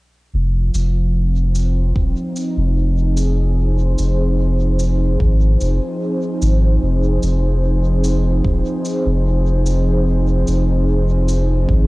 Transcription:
0.33 sub bass F1, analog synth pad F3
0.74 sub bass F1, cabasa
1.16 analog synth pad C4
1.55 cabasa
1.96 sub bass D#1, kick
2.00 analog synth pad D#4
2.36 cabasa
2.57 sub bass F1
2.88 analog synth pad G#4
3.17 cabasa
3.46 analog synth pad C5
3.98 sub bass F1, cabasa
4.79 cabasa
5.20 sub bass G#1, kick
5.61 sub bass F1, cabasa
6.42 sub bass G#1, cabasa
6.83 sub bass F1
7.23 sub bass F1, cabasa
8.04 cabasa
8.45 sub bass D#1, kick
8.85 cabasa
9.06 sub bass F1
9.66 cabasa
10.47 sub bass F1, cabasa
11.28 cabasa
11.69 sub bass G#1, kick

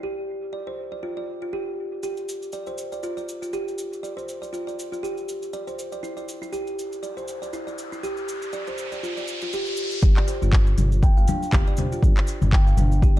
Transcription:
0.03 kalimba G4
0.53 kalimba D5
0.67 kalimba C5
0.92 kalimba D5
1.03 kalimba F4
1.17 kalimba D5
1.42 kalimba F4
1.53 kalimba G4
2.03 kalimba G4, cabasa
2.17 cabasa
2.29 cabasa
2.42 cabasa
2.52 kalimba D5, cabasa
2.67 kalimba C5, cabasa
2.78 cabasa
2.92 kalimba D5, cabasa
3.03 kalimba F4, cabasa
3.17 kalimba D5, cabasa
3.29 cabasa
3.42 kalimba F4, cabasa
3.53 kalimba G4, cabasa
3.68 cabasa
3.78 cabasa
3.93 cabasa
4.03 kalimba D5, cabasa
4.17 kalimba C5, cabasa
4.28 cabasa
4.42 kalimba D5, cabasa
4.53 kalimba F4, cabasa
4.67 kalimba D5, cabasa
4.79 cabasa
4.92 kalimba F4, cabasa
5.03 kalimba G4, cabasa
5.17 cabasa
5.29 cabasa
5.42 cabasa
5.53 kalimba D5, cabasa
5.67 kalimba C5, cabasa
5.79 cabasa
5.92 kalimba D5, cabasa
6.03 kalimba E4, riser, cabasa
6.17 kalimba D5, cabasa
6.28 cabasa
6.42 kalimba E4, cabasa
6.53 kalimba G4, cabasa
6.67 cabasa
6.79 cabasa
6.93 cabasa
7.03 kalimba D5, cabasa
7.17 kalimba C5, cabasa
7.28 cabasa
7.42 kalimba D5, cabasa
7.53 kalimba E4, cabasa
7.67 kalimba D5, cabasa
7.78 cabasa
7.92 kalimba E4, cabasa
8.03 kalimba G4, cabasa
8.17 cabasa
8.28 cabasa
8.42 cabasa
8.53 kalimba D5, cabasa
8.67 kalimba C5, cabasa
8.78 cabasa
8.92 kalimba D5, cabasa
9.03 kalimba F4, cabasa
9.17 kalimba D5, cabasa
9.28 cabasa
9.41 kalimba F4, cabasa
9.53 kalimba G4, cabasa
9.66 cabasa
9.77 cabasa
9.91 cabasa
10.02 analog synth bass G1, kalimba G4, kick, cabasa
10.17 kalimba D5, clap, cabasa
10.28 kalimba C5, open hi-hat, cabasa
10.42 analog synth bass G1, kalimba F4, high conga, cabasa
10.53 kick, clap, cabasa
10.67 cabasa
10.78 analog synth bass G1, mid tom, open hi-hat, high conga, cabasa
10.92 cabasa
11.03 kalimba G5, kick, cabasa
11.17 analog synth bass G1, kalimba F5, cabasa
11.28 kalimba D4, open hi-hat, high conga, low conga, cabasa
11.43 cabasa
11.52 analog synth bass G1, kalimba G4, kick, clap, low conga, cabasa
11.67 kalimba D5, cabasa
11.77 kalimba C5, mid tom, open hi-hat, high conga, low conga, cabasa
11.92 kalimba F4, cabasa
12.03 analog synth bass G1, kick, cabasa
12.17 clap, cabasa
12.27 open hi-hat, cabasa
12.41 analog synth bass G1, high conga, low conga, cabasa
12.52 kalimba G5, kick, clap, cabasa
12.67 kalimba F5, cabasa
12.77 analog synth bass G1, kalimba D4, mid tom, open hi-hat, high conga, cabasa
12.92 cabasa
13.02 kalimba G4, kick, cabasa
13.16 analog synth bass G1

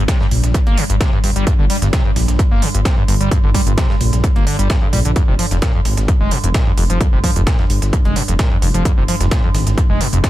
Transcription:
Already playing: synth drone G2
0.08 acid bass C3, kick, snare, closed hi-hat
0.21 acid bass G2, snare
0.31 detuned saw bass A#1, closed hi-hat, open hi-hat
0.44 detuned saw bass A#1, snare, closed hi-hat
0.54 acid bass G2, kick, closed hi-hat
0.67 detuned saw bass G1, acid bass A#3, closed hi-hat
0.78 acid bass C3, closed hi-hat, open hi-hat
0.90 detuned saw bass G1, acid bass G2, closed hi-hat
1.01 acid bass C3, kick, snare, closed hi-hat
1.13 acid bass G2
1.24 detuned saw bass G1, acid bass G2, closed hi-hat, open hi-hat
1.36 detuned saw bass G1, acid bass G3, closed hi-hat
1.47 acid bass G2, kick, closed hi-hat
1.59 detuned saw bass G1, acid bass D3
1.70 acid bass G3, closed hi-hat, open hi-hat
1.82 detuned saw bass G1, acid bass G2, snare, closed hi-hat
1.93 acid bass C3, kick, snare, closed hi-hat
2.05 acid bass G2
2.16 detuned saw bass A#1, snare, closed hi-hat, open hi-hat
2.28 detuned saw bass A#1, snare, closed hi-hat
2.39 acid bass G2, kick, closed hi-hat
2.51 detuned saw bass G1, acid bass A#3
2.62 acid bass C3, closed hi-hat, open hi-hat
2.74 detuned saw bass G1, acid bass G2, closed hi-hat
2.85 acid bass C3, kick, snare, closed hi-hat
2.98 acid bass G2
3.08 detuned saw bass G1, acid bass G2, closed hi-hat, open hi-hat
3.21 detuned saw bass G1, acid bass G3, closed hi-hat
3.31 acid bass G2, kick, closed hi-hat
3.44 detuned saw bass G1, acid bass D3
3.54 acid bass G3, kick, closed hi-hat, open hi-hat
3.67 detuned saw bass G1, acid bass G2, closed hi-hat
3.78 acid bass C3, kick, snare, closed hi-hat
3.90 acid bass G2, snare
4.01 detuned saw bass A#1, closed hi-hat, open hi-hat
4.13 detuned saw bass A#1, snare, closed hi-hat
4.24 acid bass G2, kick, closed hi-hat
4.36 detuned saw bass G1, acid bass A#3, closed hi-hat
4.47 acid bass D3, closed hi-hat, open hi-hat
4.59 detuned saw bass G1, acid bass G3, closed hi-hat
4.70 acid bass G2, kick, snare, closed hi-hat
4.82 acid bass G2
4.93 detuned saw bass A#1, acid bass G3, closed hi-hat, open hi-hat
5.05 detuned saw bass A#1, acid bass D3, closed hi-hat
5.16 acid bass F2, kick, closed hi-hat
5.28 detuned saw bass F1, acid bass C3
5.39 acid bass F3, closed hi-hat, open hi-hat
5.51 detuned saw bass F1, acid bass F2, snare, closed hi-hat
5.62 acid bass A#2, kick, snare, closed hi-hat
5.75 acid bass F2
5.85 detuned saw bass G#1, snare, closed hi-hat, open hi-hat
5.97 detuned saw bass G#1, snare, closed hi-hat
6.08 acid bass F2, kick, closed hi-hat
6.21 detuned saw bass F1, acid bass G#3
6.31 acid bass A#2, closed hi-hat, open hi-hat
6.44 detuned saw bass F1, acid bass F2, closed hi-hat
6.54 acid bass A#2, kick, snare, closed hi-hat
6.67 acid bass F2
6.77 detuned saw bass F1, acid bass F2, closed hi-hat, open hi-hat
6.90 detuned saw bass F1, acid bass F3, closed hi-hat
7.01 acid bass F2, kick, closed hi-hat
7.13 detuned saw bass F1, acid bass C3
7.24 acid bass F3, kick, closed hi-hat, open hi-hat
7.36 detuned saw bass F1, acid bass F2, closed hi-hat
7.47 acid bass A#2, kick, snare, closed hi-hat
7.59 acid bass F2, snare
7.70 detuned saw bass G1, closed hi-hat, open hi-hat
7.82 detuned saw bass G1, snare, closed hi-hat
7.93 acid bass F2, kick, closed hi-hat
8.05 detuned saw bass F1, acid bass G#3, closed hi-hat
8.16 acid bass A#2, closed hi-hat, open hi-hat
8.28 detuned saw bass F1, acid bass F2, closed hi-hat
8.39 acid bass A#2, kick, snare, closed hi-hat
8.51 acid bass F2
8.62 detuned saw bass F1, acid bass F2, closed hi-hat, open hi-hat
8.74 detuned saw bass F1, acid bass F3, closed hi-hat
8.85 acid bass F2, kick, closed hi-hat, riser
8.98 detuned saw bass F1, acid bass C3
9.08 acid bass F3, closed hi-hat, open hi-hat
9.21 detuned saw bass F1, acid bass F2, snare, closed hi-hat
9.31 acid bass A#2, kick, snare, closed hi-hat
9.44 acid bass F2
9.54 detuned saw bass G#1, snare, closed hi-hat, open hi-hat
9.67 detuned saw bass G#1, snare, closed hi-hat
9.78 acid bass F2, kick, closed hi-hat
9.90 detuned saw bass F1, acid bass G#3
10.01 acid bass A#2, closed hi-hat, open hi-hat
10.13 detuned saw bass F1, acid bass F2, closed hi-hat
10.24 acid bass A#2, kick, snare, closed hi-hat

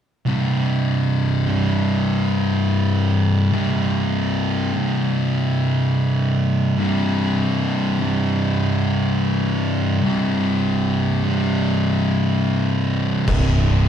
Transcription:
0.26 distorted electric guitar C2 G2 C3
1.47 distorted electric guitar C2 G2 C3
3.51 distorted electric guitar C2 G2 C3
4.74 distorted electric guitar C2 G2 C3
6.76 distorted electric guitar C2 G2 C3
8.00 distorted electric guitar C2 G2 C3
10.03 distorted electric guitar C2 G2 C3
11.24 distorted electric guitar C2 G2 C3
13.28 fingered electric bass C1, distorted electric guitar C2 G2 C3, kick, crash

